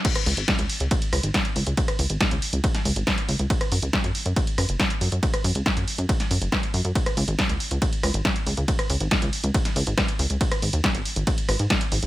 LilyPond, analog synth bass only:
\new Staff \with { instrumentName = "Analog synth bass" } { \clef bass \time 4/4 \key fis \dorian \tempo 4 = 139 r8 cis,16 gis,,16 r16 cis,16 r16 cis,16 r8 cis,16 gis,,16 r8 cis,16 cis,16 | r8 cis,16 gis,,16 r16 cis,16 r16 cis,16 r8 cis,16 gis,,16 r8 cis,16 cis,16 | r8 fis,16 cis,16 r16 fis,16 r16 fis,16 r8 fis,16 fis,,16 r8 fis,16 fis,16 | r8 fis,16 cis,16 r16 fis,16 r16 fis,16 r8 fis,16 fis,,16 r8 fis,16 fis,16 |
r8 cis,16 gis,,16 r16 cis,16 r16 cis,16 r8 cis,16 gis,,16 r8 cis,16 cis,16 | r8 cis,16 gis,,16 r16 cis,16 r16 cis,16 r8 cis,16 gis,,16 r8 cis,16 cis,16 | r8 gis,,16 dis,16 r16 gis,,16 r16 gis,,16 r8 gis,,16 gis,16 r8 gis,,16 gis,,16 | }